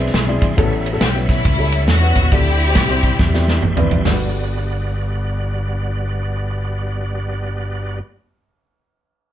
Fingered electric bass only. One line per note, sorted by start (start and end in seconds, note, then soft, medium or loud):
0.14 0.38 B1 loud
0.42 0.55 A#1 medium
0.58 0.95 A1 loud
1.01 1.38 B1 loud
1.46 1.89 C#2 medium
1.89 2.12 E2 medium
2.16 2.30 D#2 medium
2.32 2.76 D2 loud
2.76 3.13 C2 medium
3.20 3.56 E2 medium
3.63 3.86 A1 medium
3.90 4.04 G#1 medium
4.06 7.99 G1 medium